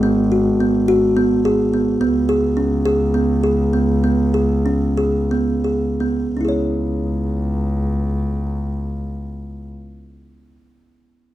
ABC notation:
X:1
M:7/8
L:1/8
Q:1/4=92
K:C#m
V:1 name="Kalimba"
B, F B, F B, G B, | B, G C G B, G B, | B, G C G B, G B, | [CEGc]6- [CEGc]- |
[CEGc]6- [CEGc] |]
V:2 name="Double bass" clef=bass
G,,,6- G,,, | C,,6- C,,- | C,,6- C,, | C,,6- C,,- |
C,,6- C,, |]